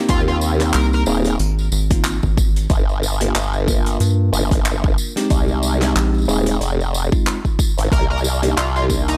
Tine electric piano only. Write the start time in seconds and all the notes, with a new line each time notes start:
Already playing: A#3 C4 D#4 G4
0.60 A#3 C4 D#4 G4
1.07 A#3 C4 D#4 G#4
1.91 A#3 C4 D#4 F4
3.21 A#3 D4 F4 G4
3.68 A#3 D4 F4 A#4
5.17 G#3 C4 D#4 G4
5.82 G#3 C4 D#4 G4
6.28 G#3 C4 D#4 G#4
7.12 G#3 C4 D#4 F4
8.43 A#3 D4 D#4 G4
8.90 A#3 D4 D#4 A#4